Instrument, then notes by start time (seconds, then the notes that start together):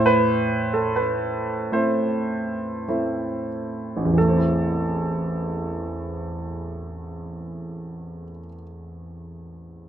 grand piano
Already playing: A2 E4 C5
0.06 B4
0.74 A4
0.96 B4
1.72 A3 C4 E4 C5
2.88 A3 C4 E4
3.97 A1
4.05 E2
4.13 E3
4.18 A3 A4
4.29 C4
4.37 E4